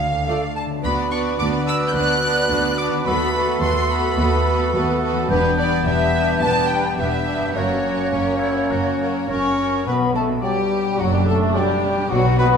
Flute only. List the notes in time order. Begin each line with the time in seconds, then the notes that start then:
Already playing: F5
0.55 A5
0.85 B5
1.12 C#6
1.39 D6
1.67 E6
1.94 F#6
2.78 D6
3.06 B5
3.61 C6
3.90 B5
5.31 B4
5.59 D5
5.86 E5
6.42 A5
6.71 G5
7.00 E5
7.57 C#5
9.29 C#6
9.87 B5
10.16 A5
10.42 G5
10.99 F#5
11.14 G5
11.28 A5
11.56 G5
12.11 F#5
12.39 B5